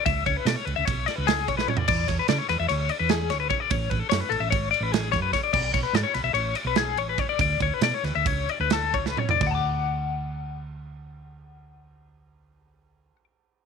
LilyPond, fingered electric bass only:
\new Staff \with { instrumentName = "Fingered electric bass" } { \clef bass \time 9/8 \key d \lydian \tempo 4. = 98 cis,8 cis,16 r16 b,16 r16 cis,16 cis,16 b,,8 r16 cis,8. b,,8 r8 | e,8 e,16 r16 cis16 r16 e,16 e,16 d,8 r16 e,8. d,8 r8 | a,,8 a,,16 r16 fis,16 r16 a,,16 a,,16 gis,,8 r16 a,,8. fis,8 r8 | b,,8 b,,16 r16 gis,16 r16 b,,16 b,,16 a,,8 r16 b,,8. a,,8 r8 |
d,8 d,16 r16 b,16 r16 d,16 d,16 cis,8 r16 d,8. cis,8 r8 | d,1~ d,8~ | d,1~ d,8 | }